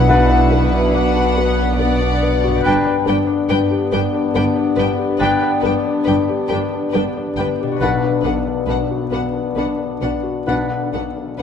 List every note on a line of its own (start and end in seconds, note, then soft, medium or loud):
0.00 2.64 B1 medium
0.00 1.25 B2 medium
0.00 2.64 B2 medium
0.00 0.10 B3 medium
0.00 2.48 B3 medium
0.00 2.48 D4 medium
0.00 0.20 F#4 medium
0.00 0.92 F#5 medium
0.06 2.61 B1 medium
0.06 0.40 D4 medium
0.06 0.91 E4 medium
0.06 1.74 B4 medium
0.06 0.40 B4 medium
0.06 0.47 F#5 medium
0.30 0.63 D4 medium
0.52 0.85 B3 medium
0.73 1.06 D4 medium
0.94 1.36 D4 medium
0.94 1.28 B4 medium
0.94 1.77 F#5 medium
1.15 1.49 F#4 medium
1.36 1.70 B3 medium
1.36 1.79 B3 medium
1.59 1.93 D4 medium
1.78 2.13 B3 medium
1.78 2.65 B3 medium
1.78 2.62 D5 medium
1.78 2.62 F#5 medium
2.01 2.35 D4 medium
2.23 2.56 B4 medium
2.44 6.37 G2 medium
2.44 2.65 F#4 medium
2.51 6.41 D4 medium
2.56 6.46 G4 medium
2.61 2.73 G1 medium
2.61 6.51 B4 medium
2.61 2.95 B4 medium
2.61 2.72 G5 medium
2.65 2.73 G2 medium
2.65 5.17 G2 medium
2.65 7.77 B3 medium
2.65 2.96 D4 medium
2.65 2.74 D4 medium
2.65 7.78 D4 medium
2.65 2.73 B4 medium
2.65 3.04 G5 medium
2.85 3.19 D4 medium
3.06 3.16 G1 medium
3.06 3.15 G2 medium
3.06 3.40 B3 medium
3.06 3.14 D4 medium
3.06 3.16 B4 medium
3.06 3.16 G5 medium
3.27 3.61 D4 medium
3.49 3.58 G1 medium
3.49 3.58 G2 medium
3.49 3.57 D4 medium
3.49 3.83 B4 medium
3.49 3.58 B4 medium
3.49 3.58 G5 medium
3.71 4.05 G4 medium
3.92 4.00 G1 medium
3.92 4.01 G2 medium
3.92 4.26 B3 medium
3.92 4.00 D4 medium
3.92 4.00 B4 medium
3.92 4.01 G5 medium
4.14 4.48 D4 medium
4.35 4.43 G1 medium
4.35 4.43 G2 medium
4.35 4.69 B3 medium
4.35 4.44 D4 medium
4.35 4.43 B4 medium
4.35 4.43 G5 medium
4.56 4.90 D4 medium
4.76 4.85 G1 medium
4.76 4.85 G2 medium
4.76 4.87 D4 medium
4.76 4.84 B4 medium
4.76 5.11 B4 medium
4.76 4.87 G5 medium
4.98 5.32 G4 medium
5.19 5.29 G1 medium
5.19 5.28 G2 medium
5.19 7.77 G2 medium
5.19 5.52 D4 medium
5.19 5.29 D4 medium
5.19 5.27 B4 medium
5.19 5.52 B4 medium
5.19 5.60 G5 medium
5.19 5.30 G5 medium
5.41 5.76 D4 medium
5.61 5.71 G1 medium
5.61 5.71 G2 medium
5.61 5.98 B3 medium
5.61 5.72 D4 medium
5.61 5.69 B4 medium
5.61 5.72 G5 medium
5.86 6.20 D4 medium
6.04 6.15 G1 medium
6.04 6.15 G2 medium
6.04 6.16 D4 medium
6.04 6.12 B4 medium
6.04 6.42 B4 medium
6.04 6.14 G5 medium
6.29 6.64 G4 soft
6.49 6.59 G1 medium
6.49 6.58 G2 medium
6.49 6.85 B3 soft
6.49 6.59 D4 medium
6.49 6.57 B4 medium
6.49 6.57 G5 medium
6.73 7.07 D4 soft
6.92 7.02 G1 medium
6.92 7.02 G2 medium
6.92 7.29 B3 medium
6.92 7.02 D4 medium
6.92 7.00 B4 medium
6.92 7.02 G5 medium
7.17 7.51 D4 medium
7.37 7.45 G1 medium
7.37 7.45 G2 medium
7.37 7.46 D4 medium
7.37 7.46 B4 medium
7.37 7.73 B4 soft
7.37 7.45 G5 medium
7.61 11.42 B2 medium
7.61 7.81 G4 soft
7.67 11.42 D4 soft
7.72 11.42 F#4 soft
7.76 11.42 B4 soft
7.80 7.88 B1 medium
7.80 10.43 B1 medium
7.80 7.89 B2 medium
7.80 11.42 B3 medium
7.80 11.42 D4 medium
7.80 8.13 D4 medium
7.80 7.90 D4 medium
7.80 8.13 B4 medium
7.80 7.89 B4 medium
7.80 8.21 F#5 medium
7.80 7.90 F#5 medium
8.04 8.38 D4 medium
8.24 8.32 B1 medium
8.24 8.32 B2 medium
8.24 8.60 B3 soft
8.24 8.33 D4 soft
8.24 8.32 B4 medium
8.24 8.33 F#5 soft
8.47 8.81 D4 soft
8.66 8.74 B1 medium
8.66 8.76 B2 medium
8.66 8.76 D4 soft
8.66 8.75 B4 medium
8.66 9.03 B4 soft
8.66 8.78 F#5 medium
8.91 9.25 F#4 soft
9.11 9.19 B1 medium
9.11 9.19 B2 soft
9.11 9.47 B3 soft
9.11 9.20 D4 soft
9.11 9.19 B4 soft
9.11 9.21 F#5 medium
9.33 9.69 D4 soft
9.55 9.63 B1 medium
9.55 9.63 B2 medium
9.55 9.92 B3 soft
9.55 9.65 D4 soft
9.55 9.65 B4 soft
9.55 9.66 F#5 soft
9.78 10.14 D4 soft
10.01 10.09 B1 soft
10.01 10.09 B2 medium
10.01 10.10 D4 soft
10.01 10.37 B4 soft
10.01 10.09 B4 soft
10.01 10.10 F#5 soft
10.23 10.60 F#4 soft
10.46 10.55 B1 soft
10.46 11.42 B1 medium
10.46 10.55 B2 medium
10.46 10.81 D4 medium
10.46 10.55 D4 soft
10.46 10.82 B4 soft
10.46 10.56 B4 soft
10.46 10.89 F#5 medium
10.46 10.57 F#5 soft
10.70 11.06 D4 soft
10.94 11.02 B1 soft
10.94 11.02 B2 soft
10.94 11.30 B3 soft
10.94 11.02 D4 soft
10.94 11.02 B4 soft
10.94 11.02 F#5 soft
11.17 11.42 D4 soft
11.38 11.42 B1 soft
11.38 11.42 D4 soft
11.38 11.42 B4 soft
11.38 11.42 F#5 soft